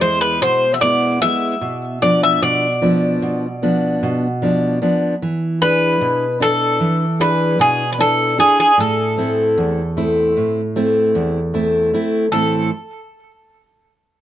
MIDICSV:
0, 0, Header, 1, 3, 480
1, 0, Start_track
1, 0, Key_signature, 0, "minor"
1, 0, Tempo, 800000
1, 969, Time_signature, 9, 3, 24, 8
1, 4563, Tempo, 786370
1, 8595, End_track
2, 0, Start_track
2, 0, Title_t, "Bouzouki"
2, 0, Program_c, 0, 25
2, 8, Note_on_c, 0, 72, 85
2, 123, Note_off_c, 0, 72, 0
2, 126, Note_on_c, 0, 71, 86
2, 249, Note_off_c, 0, 71, 0
2, 252, Note_on_c, 0, 72, 107
2, 437, Note_off_c, 0, 72, 0
2, 443, Note_on_c, 0, 76, 65
2, 484, Note_off_c, 0, 76, 0
2, 487, Note_on_c, 0, 74, 101
2, 711, Note_off_c, 0, 74, 0
2, 730, Note_on_c, 0, 76, 95
2, 1187, Note_off_c, 0, 76, 0
2, 1213, Note_on_c, 0, 74, 86
2, 1323, Note_off_c, 0, 74, 0
2, 1340, Note_on_c, 0, 76, 86
2, 1453, Note_off_c, 0, 76, 0
2, 1455, Note_on_c, 0, 74, 86
2, 2390, Note_off_c, 0, 74, 0
2, 3371, Note_on_c, 0, 71, 107
2, 3823, Note_off_c, 0, 71, 0
2, 3854, Note_on_c, 0, 69, 92
2, 4323, Note_off_c, 0, 69, 0
2, 4325, Note_on_c, 0, 71, 96
2, 4545, Note_off_c, 0, 71, 0
2, 4565, Note_on_c, 0, 68, 105
2, 4751, Note_off_c, 0, 68, 0
2, 4758, Note_on_c, 0, 71, 63
2, 4800, Note_off_c, 0, 71, 0
2, 4807, Note_on_c, 0, 69, 89
2, 5029, Note_off_c, 0, 69, 0
2, 5047, Note_on_c, 0, 68, 80
2, 5158, Note_off_c, 0, 68, 0
2, 5169, Note_on_c, 0, 68, 81
2, 5291, Note_off_c, 0, 68, 0
2, 5295, Note_on_c, 0, 69, 81
2, 6949, Note_off_c, 0, 69, 0
2, 7440, Note_on_c, 0, 69, 73
2, 7666, Note_off_c, 0, 69, 0
2, 8595, End_track
3, 0, Start_track
3, 0, Title_t, "Steel-string acoustic guitar"
3, 0, Program_c, 1, 25
3, 0, Note_on_c, 1, 40, 67
3, 3, Note_on_c, 1, 56, 51
3, 8, Note_on_c, 1, 64, 54
3, 232, Note_off_c, 1, 40, 0
3, 249, Note_on_c, 1, 47, 75
3, 390, Note_off_c, 1, 56, 0
3, 393, Note_off_c, 1, 64, 0
3, 487, Note_on_c, 1, 56, 50
3, 492, Note_on_c, 1, 59, 48
3, 494, Note_on_c, 1, 64, 53
3, 716, Note_off_c, 1, 47, 0
3, 723, Note_off_c, 1, 56, 0
3, 726, Note_off_c, 1, 59, 0
3, 729, Note_off_c, 1, 64, 0
3, 730, Note_on_c, 1, 56, 51
3, 733, Note_on_c, 1, 59, 48
3, 736, Note_on_c, 1, 64, 58
3, 923, Note_off_c, 1, 56, 0
3, 924, Note_off_c, 1, 59, 0
3, 926, Note_off_c, 1, 64, 0
3, 968, Note_on_c, 1, 47, 72
3, 1212, Note_on_c, 1, 53, 48
3, 1214, Note_on_c, 1, 59, 41
3, 1218, Note_on_c, 1, 62, 53
3, 1436, Note_off_c, 1, 47, 0
3, 1454, Note_on_c, 1, 47, 68
3, 1596, Note_off_c, 1, 53, 0
3, 1597, Note_off_c, 1, 59, 0
3, 1600, Note_off_c, 1, 62, 0
3, 1691, Note_on_c, 1, 53, 55
3, 1694, Note_on_c, 1, 59, 48
3, 1696, Note_on_c, 1, 62, 54
3, 1919, Note_off_c, 1, 47, 0
3, 1933, Note_on_c, 1, 47, 71
3, 2075, Note_off_c, 1, 53, 0
3, 2078, Note_off_c, 1, 59, 0
3, 2078, Note_off_c, 1, 62, 0
3, 2174, Note_on_c, 1, 53, 47
3, 2177, Note_on_c, 1, 59, 49
3, 2180, Note_on_c, 1, 62, 52
3, 2398, Note_off_c, 1, 47, 0
3, 2416, Note_on_c, 1, 47, 72
3, 2557, Note_off_c, 1, 53, 0
3, 2558, Note_off_c, 1, 59, 0
3, 2560, Note_off_c, 1, 62, 0
3, 2652, Note_on_c, 1, 53, 52
3, 2657, Note_on_c, 1, 59, 49
3, 2658, Note_on_c, 1, 62, 58
3, 2879, Note_off_c, 1, 47, 0
3, 2884, Note_off_c, 1, 53, 0
3, 2885, Note_off_c, 1, 59, 0
3, 2888, Note_off_c, 1, 62, 0
3, 2891, Note_on_c, 1, 53, 57
3, 2893, Note_on_c, 1, 59, 47
3, 2895, Note_on_c, 1, 62, 62
3, 3082, Note_off_c, 1, 53, 0
3, 3083, Note_off_c, 1, 59, 0
3, 3085, Note_off_c, 1, 62, 0
3, 3134, Note_on_c, 1, 52, 65
3, 3370, Note_on_c, 1, 62, 46
3, 3373, Note_on_c, 1, 64, 44
3, 3375, Note_on_c, 1, 68, 53
3, 3596, Note_off_c, 1, 52, 0
3, 3607, Note_on_c, 1, 47, 73
3, 3752, Note_off_c, 1, 62, 0
3, 3752, Note_off_c, 1, 64, 0
3, 3755, Note_off_c, 1, 68, 0
3, 3840, Note_on_c, 1, 62, 48
3, 3845, Note_on_c, 1, 64, 47
3, 3847, Note_on_c, 1, 71, 56
3, 4070, Note_off_c, 1, 47, 0
3, 4082, Note_on_c, 1, 52, 71
3, 4224, Note_off_c, 1, 62, 0
3, 4227, Note_off_c, 1, 64, 0
3, 4227, Note_off_c, 1, 71, 0
3, 4320, Note_on_c, 1, 62, 49
3, 4321, Note_on_c, 1, 64, 48
3, 4322, Note_on_c, 1, 68, 58
3, 4545, Note_off_c, 1, 52, 0
3, 4555, Note_on_c, 1, 47, 73
3, 4704, Note_off_c, 1, 62, 0
3, 4704, Note_off_c, 1, 64, 0
3, 4705, Note_off_c, 1, 68, 0
3, 4795, Note_on_c, 1, 62, 51
3, 4800, Note_on_c, 1, 64, 45
3, 4803, Note_on_c, 1, 71, 52
3, 5027, Note_off_c, 1, 47, 0
3, 5031, Note_off_c, 1, 62, 0
3, 5032, Note_off_c, 1, 64, 0
3, 5037, Note_on_c, 1, 62, 52
3, 5039, Note_off_c, 1, 71, 0
3, 5042, Note_on_c, 1, 64, 48
3, 5042, Note_on_c, 1, 68, 59
3, 5234, Note_off_c, 1, 62, 0
3, 5234, Note_off_c, 1, 64, 0
3, 5236, Note_off_c, 1, 68, 0
3, 5279, Note_on_c, 1, 45, 67
3, 5522, Note_on_c, 1, 57, 47
3, 5524, Note_on_c, 1, 60, 41
3, 5528, Note_on_c, 1, 64, 60
3, 5750, Note_off_c, 1, 45, 0
3, 5765, Note_on_c, 1, 40, 73
3, 5909, Note_off_c, 1, 57, 0
3, 5911, Note_off_c, 1, 60, 0
3, 5912, Note_off_c, 1, 64, 0
3, 6005, Note_on_c, 1, 57, 47
3, 6011, Note_on_c, 1, 60, 50
3, 6011, Note_on_c, 1, 64, 54
3, 6233, Note_off_c, 1, 40, 0
3, 6250, Note_on_c, 1, 45, 62
3, 6392, Note_off_c, 1, 57, 0
3, 6393, Note_off_c, 1, 60, 0
3, 6395, Note_off_c, 1, 64, 0
3, 6488, Note_on_c, 1, 57, 52
3, 6491, Note_on_c, 1, 60, 44
3, 6493, Note_on_c, 1, 64, 58
3, 6715, Note_off_c, 1, 45, 0
3, 6727, Note_on_c, 1, 40, 74
3, 6873, Note_off_c, 1, 57, 0
3, 6874, Note_off_c, 1, 60, 0
3, 6875, Note_off_c, 1, 64, 0
3, 6964, Note_on_c, 1, 57, 48
3, 6968, Note_on_c, 1, 60, 45
3, 6969, Note_on_c, 1, 64, 53
3, 7193, Note_off_c, 1, 40, 0
3, 7198, Note_off_c, 1, 57, 0
3, 7201, Note_off_c, 1, 60, 0
3, 7205, Note_off_c, 1, 64, 0
3, 7205, Note_on_c, 1, 57, 53
3, 7208, Note_on_c, 1, 60, 46
3, 7212, Note_on_c, 1, 64, 62
3, 7398, Note_off_c, 1, 57, 0
3, 7400, Note_off_c, 1, 60, 0
3, 7402, Note_off_c, 1, 64, 0
3, 7444, Note_on_c, 1, 45, 53
3, 7446, Note_on_c, 1, 52, 53
3, 7449, Note_on_c, 1, 57, 50
3, 7452, Note_on_c, 1, 60, 46
3, 7454, Note_on_c, 1, 64, 61
3, 7668, Note_off_c, 1, 45, 0
3, 7670, Note_off_c, 1, 52, 0
3, 7671, Note_off_c, 1, 57, 0
3, 7672, Note_off_c, 1, 60, 0
3, 7674, Note_off_c, 1, 64, 0
3, 8595, End_track
0, 0, End_of_file